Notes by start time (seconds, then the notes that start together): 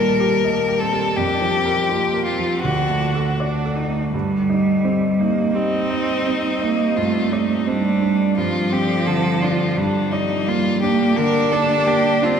Already playing: D#2 A#2 G3 G4 A#4 D#5
0.20 G4
0.44 A#3 D#5
0.68 G4
0.79 C4 A4
0.93 G3
1.16 F2 D4 G4
1.41 F3
1.55 C4
1.65 A#4
1.89 A#3 F4
2.14 A#4
2.25 C4 F4
2.39 F3
2.62 D2 D4 F#4
2.90 A3
3.15 A4
3.39 D4 D5
3.65 A4
3.76 D#4
3.90 A3
4.10 G2 G3 C4 G4 D#5
4.50 D#4
4.85 C4
5.19 A#3 D#4
5.54 G3 C4 D#4
5.91 D#4
6.27 C4
6.61 A#3 D#4
6.96 G2 A3 F4 A4 D5
7.32 D#4 D5
7.67 G3 C4 D4
8.02 D4
8.37 G2 F3 F4
8.72 C4 G4
9.06 D3 A4
9.42 D4 F4
9.76 G2 G3 A#3 D4 G4 D5
10.11 D#4 D5
10.48 A#3 F4
10.82 A#3 D4 G4
11.16 D3 D4 A#4
11.51 D4 A4
11.86 A#3 G4
12.22 C4 D4 F4